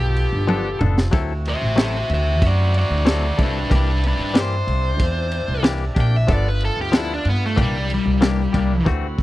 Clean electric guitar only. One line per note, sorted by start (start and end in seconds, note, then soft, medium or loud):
0.47 0.67 F3 medium
0.47 0.68 B3 loud
0.47 0.68 D4 loud
0.47 0.69 A4 loud
0.79 1.01 B3 medium
0.79 1.00 D4 medium
0.79 0.99 A4 medium
1.11 1.32 F#3 medium
1.11 1.32 C4 medium
1.11 1.32 E4 loud
1.11 1.33 A4 medium
1.76 1.96 F#3 medium
1.76 1.97 C4 medium
1.76 1.97 E4 medium
1.76 1.97 A4 medium
3.05 3.25 F#3 medium
3.05 3.26 C4 medium
3.05 3.26 E4 medium
3.05 3.26 A4 loud
3.37 3.59 C4 soft
3.37 3.58 E4 soft
3.37 3.57 A4 medium
3.70 3.90 E3 medium
3.70 3.90 A#3 medium
3.70 3.91 D4 medium
3.70 3.91 G4 medium
4.34 4.54 E3 medium
4.34 4.54 A#3 medium
4.34 4.55 D4 loud
4.34 4.55 G4 medium
5.63 5.83 E3 loud
5.63 5.83 A#3 medium
5.63 5.84 D4 loud
5.63 5.84 G4 loud
5.95 6.17 A#3 soft
5.95 6.16 D4 medium
5.95 6.15 G4 medium
6.27 6.47 F3 medium
6.27 6.48 B3 medium
6.27 6.48 D4 medium
6.27 6.49 A4 medium
6.92 7.12 F3 medium
6.92 7.12 B3 medium
6.92 7.13 D4 medium
6.92 7.13 A4 medium
7.56 7.76 E3 medium
7.56 7.77 A#3 medium
7.56 7.77 D4 medium
7.56 7.77 G4 medium
8.21 8.41 E3 medium
8.21 8.41 A#3 medium
8.21 8.42 D4 medium
8.21 8.42 G4 medium
8.53 8.75 A#3 medium
8.53 8.74 D4 medium
8.53 8.73 G4 medium
8.85 9.05 E3 medium
8.85 9.06 A3 medium
8.85 9.06 C4 medium
8.85 9.06 F#4 loud